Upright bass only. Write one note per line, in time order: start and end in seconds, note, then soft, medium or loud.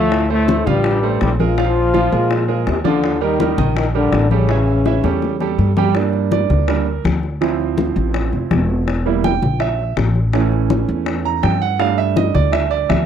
0.00 0.61 D2 medium
0.67 1.18 A1 medium
1.22 2.07 A#1 medium
2.12 2.63 A#2 medium
2.67 3.52 D#2 medium
3.58 4.09 A#1 medium
4.13 4.98 A1 medium
5.03 5.55 E2 medium
5.58 6.44 G2 medium
6.50 7.01 D2 medium
7.04 7.90 D2 medium
7.96 8.30 A1 loud
8.33 8.49 F1 medium
8.51 9.36 E1 medium
9.42 9.93 A#1 medium
9.97 10.83 A1 medium
10.89 11.39 E2 medium
11.43 12.29 G2 medium
12.35 12.86 D2 medium
12.90 13.06 D2 medium